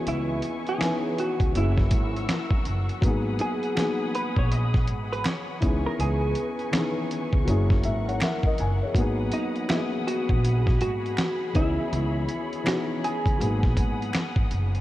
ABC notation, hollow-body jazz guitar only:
X:1
M:4/4
L:1/16
Q:"Swing 16ths" 1/4=81
K:G#m
V:1 name="Hollow-body jazz guitar"
E3 G3 F2 E6 z2 | z2 G4 B c d3 B c3 A | G8 z8 | z2 D2 E2 F4 F4 E2- |
E4 F2 G8 z2 |]